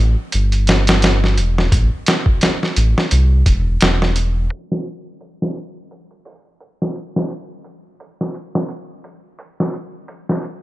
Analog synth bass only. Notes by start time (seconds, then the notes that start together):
0.00 A1
0.34 G1
1.39 E1
1.72 A1
2.77 A1
3.12 C2
3.46 E1
3.82 E1